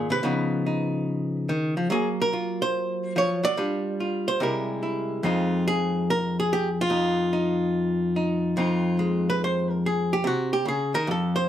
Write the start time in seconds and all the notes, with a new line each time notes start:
Already playing: G#2 D#3 C4 D#4 G#4
0.10 C3 B4
0.23 C#3 F3 B3 D#4
0.66 D#4
1.49 D#3
1.77 F3
1.90 F#3 A#3 G#4
2.22 A#4
2.33 F4
2.62 C5
3.16 F3 C#5
3.43 F#3 D5
3.57 G3 D4 F4
4.00 F4
4.28 C5
4.40 C3 G3 G#3 E4 A#4
4.83 E4
5.23 F2 G#3 C4 D#4 F4
5.68 G#4
6.10 A#4
6.40 G#4
6.53 G4
6.81 F4
6.90 F2 D#4
7.33 D#4
8.16 D#4
8.57 F2 C4 D#4 F4
8.99 G#3
9.30 B4
9.44 C5
9.70 A#4
9.86 G#4
10.13 G4
10.24 C3 F#4
10.53 G4
10.65 C#3 G#4
10.94 D#3 A#4
11.07 F2 A4
11.36 C5